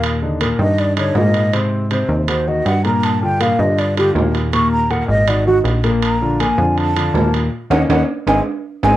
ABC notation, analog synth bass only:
X:1
M:4/4
L:1/8
Q:1/4=160
K:Eblyd
V:1 name="Analog synth bass" clef=bass
E,,3 G,,3 _A,,2- | _A,,3 E,,3 G,,2- | G,,3 G,,3 E,,2- | E,,3 _A,,,3 B,,,2- |
B,,,3 F,,3 E,,2 | z E,, E,, z _A,,, z2 A,,, |]